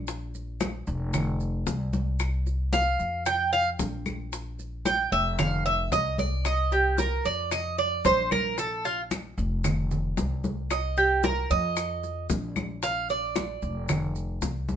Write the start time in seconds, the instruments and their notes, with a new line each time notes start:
Already playing: upright bass A#1
0.08 high bongo, high conga, maracas
0.34 high conga, maracas
0.61 high bongo, high conga, claves, maracas
0.87 upright bass F1, high conga, maracas
1.13 high bongo, high conga, low conga, claves, maracas
1.40 high conga, maracas
1.67 upright bass C2, high bongo, low bongo, high conga, maracas
1.93 high conga, maracas
2.20 high bongo, high conga, claves, maracas
2.46 high bongo, high conga, maracas
2.73 cuban tres F5, high bongo, high conga, maracas
2.99 upright bass F2, maracas
3.26 cuban tres G5, high bongo, high conga, claves, maracas
3.53 cuban tres F5, high bongo, high conga, maracas
3.79 upright bass A#1, high bongo, low bongo, high conga, maracas
4.06 high bongo, high conga, claves, maracas
4.32 high bongo, high conga, maracas
4.59 high conga, maracas
4.85 cuban tres G5, high bongo, high conga, claves, maracas
5.12 upright bass F1, cuban tres E5, high conga, maracas
5.39 cuban tres F5, high bongo, high conga, low conga, claves, maracas
5.66 cuban tres E5, high conga, maracas
5.92 upright bass C2, cuban tres D#5, high bongo, low bongo, high conga, maracas
6.18 cuban tres D5, high conga, maracas
6.45 cuban tres D#5, high bongo, high conga, claves, maracas
6.71 cuban tres G4, high bongo, high conga, maracas
6.98 cuban tres A#4, high bongo, high conga, maracas
7.25 upright bass F2, cuban tres D5, maracas
7.51 cuban tres D#5, high bongo, high conga, claves, maracas
7.78 cuban tres D5, high bongo, high conga, maracas
8.05 upright bass A#1, cuban tres C5, high bongo, low bongo, high conga, maracas
8.31 cuban tres A#4, high bongo, high conga, claves, maracas
8.58 cuban tres A4, high bongo, high conga, maracas
8.85 cuban tres F4, high conga, maracas
9.11 high bongo, high conga, claves, maracas
9.38 upright bass F1, high conga, maracas
9.64 high bongo, high conga, low conga, claves, maracas
9.91 high conga, low conga, maracas
10.17 upright bass C2, high bongo, low bongo, high conga, maracas
10.44 high conga, maracas
10.70 cuban tres D#5, high bongo, high conga, claves, maracas
10.97 cuban tres G4, high bongo, high conga, maracas
11.23 cuban tres A#4, high bongo, high conga, maracas
11.50 upright bass F2, cuban tres D#5, maracas
11.77 high bongo, high conga, claves, maracas
12.03 high bongo, high conga, maracas
12.30 upright bass A#1, high bongo, low bongo, high conga, maracas
12.56 high bongo, high conga, claves, maracas
12.83 cuban tres F5, high bongo, high conga, maracas
13.09 cuban tres D5, high conga, maracas
13.36 high bongo, high conga, claves, maracas
13.62 upright bass F1, high conga, maracas
13.89 high bongo, high conga, low conga, claves, maracas
14.15 high conga, maracas
14.42 upright bass C2, high bongo, low bongo, high conga, maracas
14.69 high conga, maracas